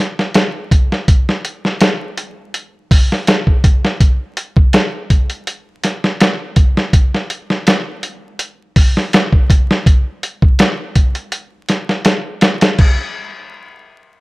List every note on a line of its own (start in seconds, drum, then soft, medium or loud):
0.19 snare soft
0.34 snare loud
0.34 closed hi-hat medium
0.71 kick loud
0.71 closed hi-hat medium
0.92 snare soft
1.08 kick loud
1.08 closed hi-hat medium
1.29 snare soft
1.45 closed hi-hat medium
1.65 snare soft
1.81 snare loud
1.81 closed hi-hat medium
2.17 closed hi-hat medium
2.54 closed hi-hat medium
2.91 kick loud
2.91 open hi-hat medium
3.12 snare soft
3.27 snare loud
3.27 closed hi-hat medium
3.47 kick medium
3.64 kick loud
3.64 closed hi-hat medium
3.85 snare medium
4.00 kick loud
4.00 closed hi-hat medium
4.37 closed hi-hat medium
4.56 kick loud
4.73 snare loud
4.73 closed hi-hat loud
5.10 kick medium
5.10 closed hi-hat medium
5.30 closed hi-hat soft
5.47 closed hi-hat medium
5.84 snare soft
5.84 closed hi-hat medium
6.04 snare soft
6.20 snare loud
6.20 closed hi-hat medium
6.56 kick loud
6.56 closed hi-hat medium
6.77 snare soft
6.93 kick loud
6.93 closed hi-hat medium
7.15 snare soft
7.30 closed hi-hat medium
7.50 snare soft
7.67 snare loud
7.67 closed hi-hat medium
8.03 closed hi-hat medium
8.39 closed hi-hat medium
8.76 kick loud
8.76 open hi-hat medium
8.97 snare soft
9.13 snare loud
9.13 closed hi-hat medium
9.33 kick loud
9.50 kick loud
9.50 closed hi-hat medium
9.71 snare medium
9.86 kick loud
9.86 closed hi-hat medium
10.23 closed hi-hat medium
10.42 kick loud
10.59 snare loud
10.59 closed hi-hat medium
10.96 kick medium
10.96 closed hi-hat medium
11.15 closed hi-hat soft
11.32 closed hi-hat medium
11.69 snare soft
11.69 closed hi-hat medium
11.89 snare soft
12.05 snare loud
12.05 closed hi-hat medium
12.41 snare loud
12.41 closed hi-hat medium
12.61 snare loud
12.61 closed hi-hat medium
12.79 kick loud
12.79 crash medium